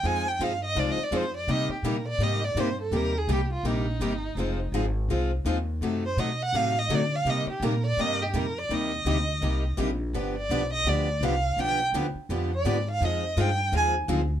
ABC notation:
X:1
M:4/4
L:1/16
Q:"Swing" 1/4=166
K:Cm
V:1 name="Violin"
a2 g2 f2 e2 (3d2 e2 d2 c2 d2 | e2 G2 B2 d2 e2 d2 c2 =A2 | B2 A2 G2 F2 E8- | E4 z12 |
z2 c2 ^d2 ^f2 =f2 d2 =d2 f2 | e2 G2 B2 d2 e2 G2 B2 d2 | e12 z4 | z2 d4 e2 d4 f4 |
g2 z8 d4 f2 | e4 g4 a2 z6 |]
V:2 name="Steel-string acoustic guitar"
[F,CEA]2 z2 [F,CEA] z3 [F,CEA]2 z2 [F,CEA] z3 | [C,G,B,EG]2 z2 [C,G,B,EG] z3 [C,G,B,EG]2 z2 [C,G,B,EG] z3 | [C,G,B,EG]2 z2 [C,G,B,EG] z3 [C,G,B,EG]2 z2 [C,G,B,EG] z3 | [F,CEA]2 z2 [F,CEA] z3 [F,CEA]2 z2 [F,CEA] z3 |
[^F,C^D=A]2 z2 [F,CDA] z3 [F,CDA]2 z2 [F,CDA] z3 | [C,G,B,EG]2 z2 [C,G,B,EG] z3 [C,G,B,EG]2 z2 [C,G,B,EG] z3 | [C,G,B,EG]2 z2 [C,G,B,EG] z3 [C,G,B,EG]2 z2 [C,G,B,EG] z3 | [D,F,=B,DG]2 z2 [D,F,B,DG] z3 [D,F,B,DG]2 z2 [D,F,B,DG] z3 |
[D,F,=B,DG]2 z2 [D,F,B,DG] z3 [D,F,B,DG]2 z2 [D,F,B,DG] z3 | [F,CEA]2 z2 [F,CEA] z3 [F,CEA]2 z2 [F,CEA] z3 |]
V:3 name="Steel-string acoustic guitar"
[F,A,EFc]2 z2 [F,A,EFc] z3 [F,A,EFc]2 z2 [F,A,EFc] z3 | [C,G,B,EG]2 z2 [C,G,B,EG] z3 [C,G,B,EG]2 z2 [C,G,B,EG] z3 | [C,G,B,EG]2 z2 [C,G,B,EG] z3 [C,G,B,EG]2 z2 [C,G,B,EG] z3 | [F,A,EFc]2 z2 [F,A,EFc] z3 [F,A,EFc]2 z2 [F,A,EFc] z3 |
[C,^F,=A,^D^F]2 z2 [C,F,A,DF] z3 [C,F,A,DF]2 z2 [C,F,A,DF] z3 | [C,G,B,EG]2 z2 [C,G,B,EG] z3 [C,G,B,EG]2 z2 [C,G,B,EG] z3 | [C,G,B,EG]2 z2 [C,G,B,EG] z3 [C,G,B,EG]2 z2 [C,G,B,EG] z3 | [D,F,=B,DG]2 z2 [D,F,B,DG] z3 [D,F,B,DG]2 z2 [D,F,B,DG] z3 |
[D,F,=B,DG]2 z2 [D,F,B,DG] z3 [D,F,B,DG]2 z2 [D,F,B,DG] z3 | [F,A,EFc]2 z2 [F,A,EFc] z3 [F,A,EFc]2 z2 [F,A,EFc] z3 |]
V:4 name="Upright bass" clef=bass
F,,4 G,,4 C,,2 z2 F,,4 | C,2 z2 B,,4 A,,4 G,,4 | E,,4 C,,4 B,,,4 G,,,4 | F,,,4 A,,,4 C,,4 E,,4 |
^F,,4 =B,,4 =A,,4 D,4 | C,2 z2 B,,4 G,,4 F,,4 | E,,4 D,,4 C,,4 B,,,4 | G,,,4 =B,,,4 D,,4 C,,4 |
=B,,,4 D,,2 z2 F,,4 A,,4 | F,,4 G,,4 E,,4 D,,4 |]